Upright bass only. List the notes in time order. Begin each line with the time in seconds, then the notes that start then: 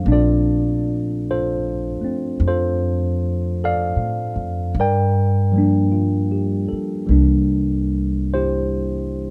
0.06 A#1
2.02 muted upright bass stroke
2.40 F2
3.96 A2
4.36 F2
4.75 G2
6.72 muted upright bass stroke
7.09 C2